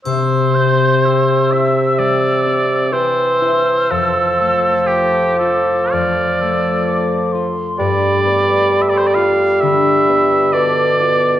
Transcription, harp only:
\new Staff \with { instrumentName = "Harp" } { \time 4/4 \key c \major \tempo 4 = 64 c8 c'8 g'8 e'8 g8 c'8 g'8 e'8 | f,8 a8 a'8 f'8 f,8 a8 a'8 f'8 | g,8 b8 a'8 f'8 d8 b8 a'8 f'8 | }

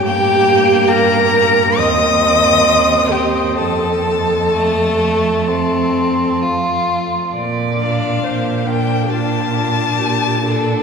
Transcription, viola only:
\new Staff \with { instrumentName = "Viola" } { \time 4/4 \key bes \major \tempo 4 = 66 g'4 bes'4 ees''4. g'8 | a'2. r4 | d''4 c''8 bes'8 f'4 g'8 a'8 | }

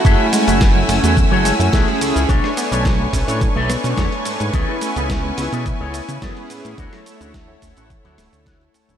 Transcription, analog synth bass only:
\new Staff \with { instrumentName = "Analog synth bass" } { \clef bass \time 4/4 \key fis \minor \tempo 4 = 107 fis,,16 r8 fis,,8. fis,,16 e,8 fis,,8 fis,16 b,,16 r16 cis,16 cis,16 | b,,16 r8 b,,8. b,,16 a,8 b,,8 b,16 e,16 r16 gis,16 gis,16 | cis,16 r8 cis,8. cis,16 b,8 cis,8 cis16 fis,16 r16 a,16 a,16 | d,16 r8 d,8. d,16 a,,8 d,16 d,,16 d,8. d,,16 d,,16 | }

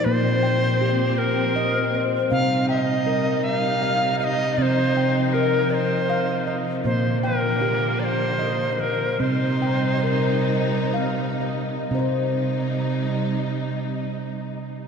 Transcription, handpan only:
<<
  \new Staff \with { instrumentName = "Handpan" } { \time 6/8 \key c \minor \tempo 4. = 53 << { c''8 g''4. r8 c''8~ | c''8 g''4. r8 ees''8~ | ees''8 g''4. r8 ees''8~ | ees''8 g''4. r8 c''8~ |
c''8 g''4. r8 ees''8~ | ees''8 r2 r8 | } \\ { bes4 g'4 ees''4 | c'4 bes'4 f''4 | c'4 bes'4 f''4 | bes4 g'4 ees''4 |
c'4 bes'4 f''4 | r2. | } >> }
  \new Staff \with { instrumentName = "Handpan" } { \clef bass \time 6/8 \key c \minor bes,2. | c2. | c2. | bes,2. |
c2. | <c c' c''>2. | }
>>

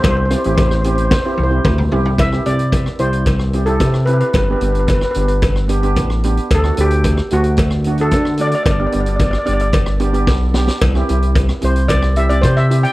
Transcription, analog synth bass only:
\new Staff \with { instrumentName = "Analog synth bass" } { \clef bass \time 4/4 \key c \major \tempo 4 = 111 c,8. a,,4.~ a,,16 c,8 d,8 c,8 | c,8 c,4 c,4. c4 | g,,8 g,,4 g,,4. a,,4 | d,8 d,4 d,4. d4 |
g,,8 g,,4 g,,4. b,,4 | c,8 c,4 c,4. c4 | }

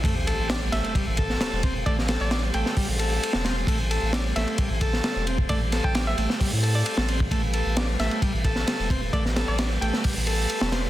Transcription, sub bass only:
\new Staff \with { instrumentName = "Sub bass" } { \clef bass \time 4/4 \key a \minor \tempo 4 = 132 a,,8. a,,8. a,,16 r16 a,,16 a,,8. r16 e,,8. | a,,8. a,,8. a,,16 r8 a,,8. r16 e,,8. | a,,8. a,,8. a,,16 r16 a,,16 a,,8. r16 e,,8. | a,,8. a,,8. a,,16 r8 a,8. r16 a,,8. |
a,,8. a,,8. a,,16 r16 a,,16 a,,8. r16 e,,8. | a,,8. a,,8. a,,16 r8 a,,8. r16 e,,8. | }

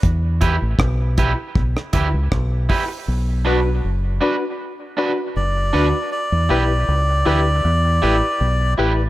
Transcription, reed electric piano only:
\new Staff \with { instrumentName = "Reed electric piano" } { \time 4/4 \key b \minor \tempo 4 = 79 r1 | r8 <d' fis' b'>16 r8. <d' fis' b'>16 r8. <d' fis' b'>16 <fis' b'>16 r8 <d' fis' b'>16 r16 | r8 <e' g' b'>16 r8. <e' g' b'>16 r8. <e' g' b'>16 r8. <e' g' b'>16 r16 | }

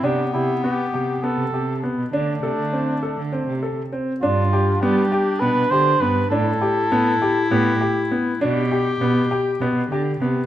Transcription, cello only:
\new Staff \with { instrumentName = "Cello" } { \clef bass \time 7/8 \key g \mixolydian \tempo 4 = 100 c16 r16 c8 r8 c8 r16 c16 c8. b,16 | d8 c16 d8 r8 d8 c8 r8. | g,4 g8 r8 b,16 b,16 d8 g,8 | a,8 r8 a,8 r8 a,8 r4 |
b,4 b,8 r8 b,16 b,16 d8 c8 | }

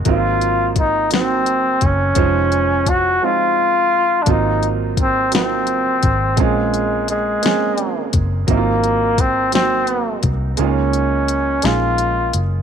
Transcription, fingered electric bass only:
\new Staff \with { instrumentName = "Fingered electric bass" } { \clef bass \time 6/8 \key aes \mixolydian \tempo 4. = 57 aes,,2~ aes,,8 ges,,8 | f,,4. r4. | aes,,2~ aes,,8 aes,,8 | bes,,4. f,,4 ges,,8 |
aes,,2~ aes,,8 c,8 | des,4. bes,,4 ges,,8 | }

